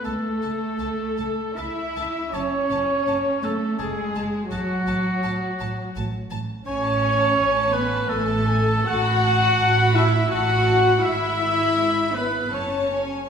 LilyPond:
<<
  \new Staff \with { instrumentName = "Violin section" } { \time 3/4 \key fis \minor \tempo 4 = 82 a''8 a''8 a''8 a''8 a''8 a''8 | a''8 a''8 a''8 a''8 a''8 a''8 | a''8 a''8 a''8 a''8 a''8 a''8 | \key e \major gis''16 a''16 gis''16 a''16 gis''16 a''16 gis''16 a''16 gis''16 a''16 gis''16 a''16 |
a''16 b''16 a''16 b''16 a''16 b''16 a''16 b''16 a''16 b''16 a''16 b''16 | b''2 a''8 gis''8 | }
  \new Staff \with { instrumentName = "Oboe" } { \time 3/4 \key fis \minor a'2 e''4 | cis''4. a'8 gis'8 r8 | fis'2 r4 | \key e \major cis''4. b'8 a'4 |
fis''4. e''8 fis''4 | e''4. b'8 cis''8 r8 | }
  \new Staff \with { instrumentName = "Violin section" } { \time 3/4 \key fis \minor a'2 e''4 | cis''4. a'8 gis'4 | fis'2 r4 | \key e \major cis''4. b'8 a'4 |
fis''4. e''8 fis''4 | e''4. b'8 cis''4 | }
  \new Staff \with { instrumentName = "Cello section" } { \time 3/4 \key fis \minor a2 e'4 | cis'4. a8 gis4 | fis2 r4 | \key e \major cis'4. b8 a4 |
fis'4. e'8 fis'4 | e'4. b8 cis'4 | }
  \new Staff \with { instrumentName = "Viola section" } { \time 3/4 \key fis \minor a2 e'4 | cis'4. a8 gis4 | fis2 r4 | \key e \major cis'4. b8 a4 |
fis'4. e'8 fis'4 | e'4. b8 cis'4 | }
  \new Staff \with { instrumentName = "Double bass section" } { \clef bass \time 3/4 \key fis \minor cis,8 cis,8 cis,8 cis,8 cis,8 cis,8 | fis,,8 fis,,8 fis,,8 fis,,8 fis,,8 fis,,8 | a,,8 a,,8 a,,8 a,,8 a,,8 a,,8 | \key e \major a,,4 a,,4 a,,4 |
a,,4 a,,4 a,,4 | gis,,2 fis,,4 | }
>>